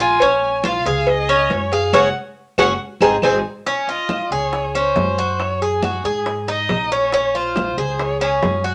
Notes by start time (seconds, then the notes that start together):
Already playing: A#1
0.00 F4 G#5
0.20 C#4, cowbell, high conga
0.42 high conga
0.64 F4 F5, cowbell, high conga, claves
0.85 C#2 G#4, cowbell, high conga
1.07 D#5, cowbell, high conga
1.29 C#4, high conga, claves
1.50 F#2 C#5, cowbell, high conga
1.71 G#4 F5, cowbell, high conga
1.93 F#1 C#4 F#4 G#4 F#5, cowbell, high conga, claves
2.58 F#1 C#4 F#4 G#4 F#5, cowbell, high conga, claves
3.01 G#1 C4 D#4 G#4 G#5, cowbell, high conga, claves
3.22 G#1 C4 D#4 G#4 G#5, cowbell, high conga, claves
3.66 C#4, high bongo, high conga
3.87 F4 D#5, high conga
4.09 high bongo, high conga, claves
4.31 C#2 G#4 C#5, high bongo, high conga
4.53 high bongo, high conga
4.74 C#4 C5, high bongo, high conga, claves
4.96 F#2, high bongo, low bongo, high conga
5.18 F#4, high bongo, high conga
5.40 C#5, high bongo, high conga, claves
5.62 G#4, high conga
5.82 F#4, high bongo, high conga, claves
6.04 G#2 G#4, high bongo, high conga
6.26 high bongo, high conga
6.48 D#4 D#5, high bongo, high conga
6.69 A#1, high bongo, low bongo, high conga, claves
6.91 C#4 C#5, high bongo, high conga
7.12 C#4, high bongo, high conga
7.35 F4 C5, high conga
7.56 high bongo, high conga, claves
7.77 C#2 G#4, high bongo, high conga
7.99 C#5, high bongo, high conga
8.21 C#4 G#4, high bongo, high conga, claves
8.43 F#2, high bongo, low bongo, high conga
8.64 F#4, high bongo, high conga